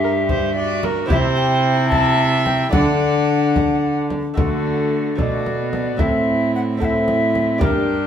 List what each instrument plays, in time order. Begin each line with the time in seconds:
Already playing: lute G2 A#3 D4 G4, cello G2, viola G4, recorder E5
0.04 viola A#4
0.29 viola C5, frame drum
0.55 viola F#4 D5
0.83 viola A#4, frame drum
1.06 lute C3 C4 E4 G4
1.10 cello C3, viola E4 C5, recorder E5, frame drum
1.36 recorder G5
1.89 viola E5, recorder A5, frame drum
2.46 recorder G5, frame drum
2.69 lute D3 A3 D4 D5, viola D5, recorder F#5, frame drum
2.74 cello D3, viola D4
3.56 frame drum
4.10 frame drum
4.34 lute D3 A3 F#4 A4, recorder A4, frame drum
4.38 cello D3, viola A3 F#4
5.15 lute B2 A3 F#4 A4, cello B2, recorder D5, frame drum
5.19 viola A3 F#4
5.46 frame drum
5.60 viola B3
5.73 recorder D5, frame drum
5.97 lute A2 C4 E4 A4, viola E4, recorder E5, frame drum
6.01 cello A2, viola C4
6.55 recorder F#5
6.77 lute C4 E4 A4, recorder F#5
6.82 viola C4 E4, recorder E5, frame drum
7.08 frame drum
7.35 frame drum
7.58 lute G2 D4 G4 A#4, frame drum
7.62 cello G2, viola D4 G4, recorder A#4